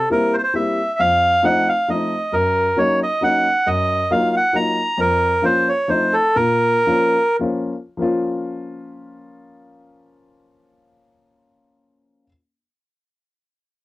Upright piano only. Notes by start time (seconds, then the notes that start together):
0.10 G3 A#3 C4 E4
0.54 G3 A#3 C4 E4
0.99 F2
1.43 F3 A3 C4 D#4
1.88 F3 A3 C4 D#4
2.32 F#2
2.76 F#3 A#3 C#4 D#4
3.21 F#3 A#3 C#4 D#4
3.66 F#2
4.10 F#3 A#3 D#4 F4
4.53 F#3 A#3 D#4 F4
4.98 F2
5.42 F3 A#3 C#4 F4
5.88 F3 A3 C4 D#4
6.36 A#2
6.86 F3 A#3 C#4 F4
7.39 F3 A#3 C#4 F4
7.97 F3 A#3 C#4
8.02 F4